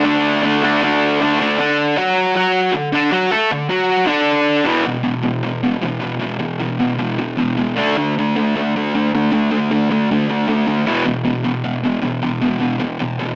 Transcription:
0.04 D3 A3 D4
0.43 D3 A3 D4
0.62 D3 A3 D4
0.82 D3 A3 D4
1.20 D3 A3 D4
1.39 D3 A3 D4
1.59 D3 D4
1.97 F#3 F#4
2.35 F#3 F#4
2.73 D3
2.92 D3 D4
3.12 F#3 F#4
3.31 A3 A4
3.51 D3
3.70 F#3 F#4
4.06 D3 D4
4.65 E2 B2 E3
4.84 E2 B2
5.03 E2 B2
5.22 E2 B2
5.43 E2 B2
5.63 E2 B2
5.82 E2 B2
6.00 E2 B2
6.20 E2 B2
6.39 E2 B2
6.59 E2 B2
6.79 E2 B2
6.98 E2 B2
7.18 E2 B2
7.37 E2 B2
7.57 E2 B2
7.77 D3 A3 D4
7.98 D3 A3
8.19 D3 A3
8.36 D3 A3
8.55 D3 A3
8.76 D3 A3
8.95 D3 A3
9.14 D3 A3
9.32 D3 A3
9.51 D3 A3
9.71 D3 A3
9.91 D3 A3
10.11 D3 A3
10.29 D3 A3
10.48 D3 A3
10.67 D3 A3
10.86 E2 B2 E3
11.05 E2 B2
11.25 E2 B2
11.44 E2 B2
11.64 E2 B2
11.84 E2 B2
12.02 E2 B2
12.22 E2 B2
12.41 E2 B2
12.60 E2 B2
12.80 E2 B2
12.99 E2 B2
13.19 E2 B2

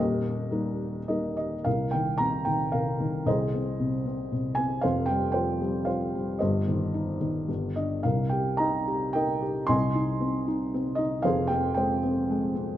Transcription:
Already playing: D#1 D#2 G4 A#4 D#5
0.51 G3 A#3 D#4
1.08 G3 A#3 D#4 D#5
1.37 D#5
1.64 C2 A#4 F5
1.91 D#3 G5
2.18 C3 A#5
2.45 D#3 G5
2.72 C3 A#4 F5
3.00 D#3
3.26 C2 G#4 C5 D#5
3.54 C4
3.80 C3
4.06 C4
4.32 C3
4.55 C4 G#5
4.81 F1 F2 C5 F5
5.06 G5
5.10 G3
5.32 F3 C5 G5
5.61 G3
5.85 F3 C5 F5
6.15 G3
6.39 G1 G2 G4 C5 D#5
6.68 D#3
6.94 D#4
7.21 D#3
7.48 G1 G2
7.76 D4 D#5
8.03 C2 C3 A#4 F5
8.29 G4 G5
8.57 D#4 D#5 G5 A#5
8.88 G4
9.13 D#4 A#4 D#5 G5
9.42 G4
9.67 C2 C3 D#5 G#5 C6
9.95 D#4
10.20 C4
10.48 D#4
10.74 C4
10.95 D#4 D#5
11.22 F1 F2 G#4 C5 F5
11.47 C4 G5
11.74 G#3 C5 G5
12.04 C4
12.30 G#3
12.55 C4

